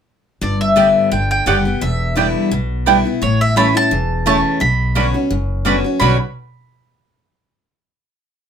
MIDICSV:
0, 0, Header, 1, 5, 480
1, 0, Start_track
1, 0, Key_signature, 2, "minor"
1, 0, Tempo, 349447
1, 573, Time_signature, 4, 2, 24, 8
1, 11666, End_track
2, 0, Start_track
2, 0, Title_t, "Mandolin"
2, 0, Program_c, 0, 25
2, 583, Note_on_c, 0, 74, 82
2, 830, Note_off_c, 0, 74, 0
2, 836, Note_on_c, 0, 76, 97
2, 1488, Note_off_c, 0, 76, 0
2, 1534, Note_on_c, 0, 79, 100
2, 1781, Note_off_c, 0, 79, 0
2, 1798, Note_on_c, 0, 79, 97
2, 2013, Note_off_c, 0, 79, 0
2, 2018, Note_on_c, 0, 78, 87
2, 2494, Note_off_c, 0, 78, 0
2, 2500, Note_on_c, 0, 76, 80
2, 2944, Note_off_c, 0, 76, 0
2, 4431, Note_on_c, 0, 73, 94
2, 4663, Note_off_c, 0, 73, 0
2, 4686, Note_on_c, 0, 76, 94
2, 4898, Note_off_c, 0, 76, 0
2, 4903, Note_on_c, 0, 83, 98
2, 5139, Note_off_c, 0, 83, 0
2, 5175, Note_on_c, 0, 81, 111
2, 5846, Note_off_c, 0, 81, 0
2, 5862, Note_on_c, 0, 81, 93
2, 6328, Note_off_c, 0, 81, 0
2, 6334, Note_on_c, 0, 83, 94
2, 7974, Note_off_c, 0, 83, 0
2, 8236, Note_on_c, 0, 83, 85
2, 8483, Note_off_c, 0, 83, 0
2, 11666, End_track
3, 0, Start_track
3, 0, Title_t, "Mandolin"
3, 0, Program_c, 1, 25
3, 1042, Note_on_c, 1, 59, 83
3, 1052, Note_on_c, 1, 67, 86
3, 1055, Note_on_c, 1, 74, 97
3, 1060, Note_on_c, 1, 79, 92
3, 1180, Note_off_c, 1, 59, 0
3, 1186, Note_off_c, 1, 67, 0
3, 1187, Note_off_c, 1, 74, 0
3, 1190, Note_off_c, 1, 79, 0
3, 2011, Note_on_c, 1, 59, 87
3, 2016, Note_on_c, 1, 67, 104
3, 2023, Note_on_c, 1, 74, 99
3, 2029, Note_on_c, 1, 79, 92
3, 2146, Note_off_c, 1, 59, 0
3, 2148, Note_off_c, 1, 67, 0
3, 2152, Note_off_c, 1, 74, 0
3, 2154, Note_off_c, 1, 79, 0
3, 2972, Note_on_c, 1, 59, 86
3, 2978, Note_on_c, 1, 64, 81
3, 2981, Note_on_c, 1, 74, 92
3, 2986, Note_on_c, 1, 79, 96
3, 3106, Note_off_c, 1, 59, 0
3, 3109, Note_off_c, 1, 64, 0
3, 3111, Note_off_c, 1, 74, 0
3, 3113, Note_off_c, 1, 79, 0
3, 3932, Note_on_c, 1, 59, 96
3, 3935, Note_on_c, 1, 64, 100
3, 3944, Note_on_c, 1, 74, 104
3, 3945, Note_on_c, 1, 79, 107
3, 4066, Note_off_c, 1, 59, 0
3, 4068, Note_off_c, 1, 64, 0
3, 4072, Note_off_c, 1, 74, 0
3, 4073, Note_off_c, 1, 79, 0
3, 4892, Note_on_c, 1, 57, 79
3, 4900, Note_on_c, 1, 64, 86
3, 4907, Note_on_c, 1, 73, 82
3, 4910, Note_on_c, 1, 81, 84
3, 5026, Note_off_c, 1, 57, 0
3, 5030, Note_off_c, 1, 64, 0
3, 5033, Note_off_c, 1, 73, 0
3, 5035, Note_off_c, 1, 81, 0
3, 5851, Note_on_c, 1, 57, 98
3, 5859, Note_on_c, 1, 64, 91
3, 5863, Note_on_c, 1, 73, 104
3, 5864, Note_on_c, 1, 81, 106
3, 5984, Note_off_c, 1, 57, 0
3, 5988, Note_off_c, 1, 64, 0
3, 5990, Note_off_c, 1, 73, 0
3, 5991, Note_off_c, 1, 81, 0
3, 6803, Note_on_c, 1, 61, 92
3, 6812, Note_on_c, 1, 66, 85
3, 6814, Note_on_c, 1, 74, 91
3, 6823, Note_on_c, 1, 83, 93
3, 6940, Note_off_c, 1, 61, 0
3, 6945, Note_off_c, 1, 66, 0
3, 6945, Note_off_c, 1, 74, 0
3, 6950, Note_off_c, 1, 83, 0
3, 7759, Note_on_c, 1, 61, 89
3, 7767, Note_on_c, 1, 66, 84
3, 7773, Note_on_c, 1, 74, 100
3, 7780, Note_on_c, 1, 83, 101
3, 7897, Note_off_c, 1, 61, 0
3, 7901, Note_off_c, 1, 66, 0
3, 7904, Note_off_c, 1, 74, 0
3, 7908, Note_off_c, 1, 83, 0
3, 8237, Note_on_c, 1, 61, 91
3, 8248, Note_on_c, 1, 66, 88
3, 8258, Note_on_c, 1, 74, 90
3, 8267, Note_on_c, 1, 83, 94
3, 8450, Note_off_c, 1, 61, 0
3, 8455, Note_off_c, 1, 66, 0
3, 8461, Note_off_c, 1, 74, 0
3, 8465, Note_off_c, 1, 83, 0
3, 11666, End_track
4, 0, Start_track
4, 0, Title_t, "Steel-string acoustic guitar"
4, 0, Program_c, 2, 25
4, 569, Note_on_c, 2, 43, 90
4, 1041, Note_on_c, 2, 50, 88
4, 1049, Note_on_c, 2, 55, 88
4, 1054, Note_on_c, 2, 59, 90
4, 1061, Note_on_c, 2, 67, 92
4, 1488, Note_off_c, 2, 43, 0
4, 1506, Note_off_c, 2, 50, 0
4, 1510, Note_off_c, 2, 55, 0
4, 1513, Note_off_c, 2, 59, 0
4, 1516, Note_off_c, 2, 67, 0
4, 1531, Note_on_c, 2, 50, 93
4, 1989, Note_off_c, 2, 50, 0
4, 2005, Note_on_c, 2, 50, 85
4, 2011, Note_on_c, 2, 55, 80
4, 2016, Note_on_c, 2, 59, 89
4, 2027, Note_on_c, 2, 67, 85
4, 2253, Note_off_c, 2, 67, 0
4, 2258, Note_off_c, 2, 50, 0
4, 2261, Note_off_c, 2, 55, 0
4, 2263, Note_off_c, 2, 59, 0
4, 2269, Note_on_c, 2, 67, 55
4, 2291, Note_on_c, 2, 59, 46
4, 2485, Note_off_c, 2, 67, 0
4, 2491, Note_on_c, 2, 40, 95
4, 2495, Note_off_c, 2, 59, 0
4, 2960, Note_on_c, 2, 50, 83
4, 2971, Note_on_c, 2, 55, 92
4, 2978, Note_on_c, 2, 59, 91
4, 2982, Note_on_c, 2, 64, 94
4, 3409, Note_off_c, 2, 40, 0
4, 3426, Note_off_c, 2, 50, 0
4, 3431, Note_off_c, 2, 55, 0
4, 3434, Note_off_c, 2, 59, 0
4, 3437, Note_off_c, 2, 64, 0
4, 3453, Note_on_c, 2, 47, 92
4, 3937, Note_on_c, 2, 50, 80
4, 3945, Note_on_c, 2, 55, 77
4, 3948, Note_on_c, 2, 59, 93
4, 3955, Note_on_c, 2, 64, 93
4, 4175, Note_off_c, 2, 64, 0
4, 4184, Note_off_c, 2, 50, 0
4, 4188, Note_off_c, 2, 55, 0
4, 4189, Note_off_c, 2, 59, 0
4, 4192, Note_on_c, 2, 64, 57
4, 4212, Note_on_c, 2, 59, 49
4, 4370, Note_off_c, 2, 47, 0
4, 4406, Note_off_c, 2, 64, 0
4, 4416, Note_off_c, 2, 59, 0
4, 4418, Note_on_c, 2, 45, 91
4, 4891, Note_on_c, 2, 52, 80
4, 4898, Note_on_c, 2, 57, 81
4, 4907, Note_on_c, 2, 61, 89
4, 4911, Note_on_c, 2, 64, 88
4, 5131, Note_off_c, 2, 64, 0
4, 5140, Note_off_c, 2, 52, 0
4, 5144, Note_off_c, 2, 57, 0
4, 5147, Note_on_c, 2, 64, 62
4, 5148, Note_off_c, 2, 61, 0
4, 5169, Note_on_c, 2, 61, 51
4, 5331, Note_off_c, 2, 45, 0
4, 5363, Note_off_c, 2, 64, 0
4, 5373, Note_on_c, 2, 40, 98
4, 5374, Note_off_c, 2, 61, 0
4, 5848, Note_on_c, 2, 52, 85
4, 5856, Note_on_c, 2, 57, 80
4, 5859, Note_on_c, 2, 61, 88
4, 5864, Note_on_c, 2, 64, 86
4, 6288, Note_off_c, 2, 40, 0
4, 6308, Note_off_c, 2, 52, 0
4, 6312, Note_off_c, 2, 57, 0
4, 6313, Note_off_c, 2, 61, 0
4, 6316, Note_off_c, 2, 64, 0
4, 6321, Note_on_c, 2, 47, 86
4, 6803, Note_on_c, 2, 50, 76
4, 6808, Note_on_c, 2, 59, 84
4, 6815, Note_on_c, 2, 61, 84
4, 6818, Note_on_c, 2, 66, 92
4, 7047, Note_off_c, 2, 66, 0
4, 7055, Note_off_c, 2, 50, 0
4, 7058, Note_off_c, 2, 59, 0
4, 7061, Note_off_c, 2, 61, 0
4, 7064, Note_on_c, 2, 66, 59
4, 7082, Note_on_c, 2, 61, 47
4, 7241, Note_off_c, 2, 47, 0
4, 7280, Note_off_c, 2, 66, 0
4, 7287, Note_on_c, 2, 42, 94
4, 7289, Note_off_c, 2, 61, 0
4, 7760, Note_on_c, 2, 50, 85
4, 7771, Note_on_c, 2, 59, 93
4, 7778, Note_on_c, 2, 61, 90
4, 7785, Note_on_c, 2, 66, 90
4, 8010, Note_off_c, 2, 66, 0
4, 8013, Note_off_c, 2, 50, 0
4, 8018, Note_off_c, 2, 59, 0
4, 8022, Note_off_c, 2, 61, 0
4, 8026, Note_on_c, 2, 66, 51
4, 8050, Note_on_c, 2, 61, 46
4, 8204, Note_off_c, 2, 42, 0
4, 8240, Note_off_c, 2, 66, 0
4, 8246, Note_on_c, 2, 47, 86
4, 8248, Note_off_c, 2, 61, 0
4, 8253, Note_on_c, 2, 50, 79
4, 8260, Note_on_c, 2, 59, 87
4, 8265, Note_on_c, 2, 61, 97
4, 8268, Note_on_c, 2, 66, 97
4, 8455, Note_off_c, 2, 47, 0
4, 8458, Note_off_c, 2, 50, 0
4, 8462, Note_off_c, 2, 59, 0
4, 8464, Note_off_c, 2, 61, 0
4, 8465, Note_off_c, 2, 66, 0
4, 11666, End_track
5, 0, Start_track
5, 0, Title_t, "Upright bass"
5, 0, Program_c, 3, 32
5, 570, Note_on_c, 3, 31, 96
5, 1265, Note_off_c, 3, 31, 0
5, 1534, Note_on_c, 3, 31, 82
5, 1943, Note_off_c, 3, 31, 0
5, 2013, Note_on_c, 3, 30, 86
5, 2422, Note_off_c, 3, 30, 0
5, 2500, Note_on_c, 3, 28, 95
5, 3192, Note_off_c, 3, 28, 0
5, 3454, Note_on_c, 3, 35, 83
5, 4147, Note_off_c, 3, 35, 0
5, 4420, Note_on_c, 3, 33, 90
5, 5110, Note_off_c, 3, 33, 0
5, 5376, Note_on_c, 3, 28, 81
5, 6068, Note_off_c, 3, 28, 0
5, 6341, Note_on_c, 3, 35, 98
5, 7030, Note_off_c, 3, 35, 0
5, 7290, Note_on_c, 3, 30, 82
5, 7983, Note_off_c, 3, 30, 0
5, 8255, Note_on_c, 3, 35, 97
5, 8493, Note_off_c, 3, 35, 0
5, 11666, End_track
0, 0, End_of_file